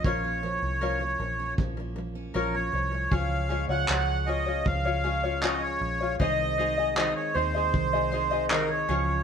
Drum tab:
CP |--------|--x---x-|--x---x-|
BD |o---o---|o---o---|o---o---|